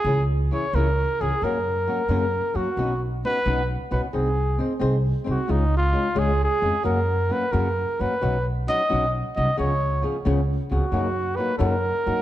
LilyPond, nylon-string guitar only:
\new Staff \with { instrumentName = "Nylon-string guitar" } { \time 6/8 \key b \major \tempo 4. = 89 <cis e cis' e' gis'>8 r8 <e cis' e' gis'>8 <cis e cis' e' gis'>8 r8 <e cis' e' gis'>8 | <fis, cis fis ais cis' fis'>8 r8 <fis ais cis' fis'>8 <fis, cis fis ais cis' fis'>8 r8 <fis ais cis' fis'>8 | <b, b cis' dis' fis'>8 r8 <b cis' dis' fis'>8 <b, b cis' dis' fis'>8 r8 <b cis' dis' fis'>8 | <bis dis' gis' bis'>8 r8 <bis dis' gis' bis'>8 <bis dis' gis' bis'>8 r8 <bis dis' gis' bis'>8 |
<cis gis cis' eis' gis'>8 r8 <gis cis' eis' gis'>8 <cis gis cis' eis' gis'>8 r8 <gis cis' eis' gis'>8 | <fis, cis fis ais cis' fis'>8 r8 <fis ais cis' fis'>8 <fis, cis fis ais cis' fis'>8 r8 <fis ais cis' fis'>8 | <b, fis cis' dis' fis'>8 r8 <fis cis' dis' fis'>8 <b, fis cis' dis' fis'>8 r8 <fis cis' dis' fis'>8 | <cis eis b cis' gis'>8 r8 <eis b cis' gis'>8 <cis eis b cis' gis'>8 r8 <eis b cis' gis'>8 |
<fis, cis fis ais dis' fis'>8 r8 <fis ais dis' fis'>8 <fis, cis fis ais dis' fis'>8 r8 <fis ais dis' fis'>8 | }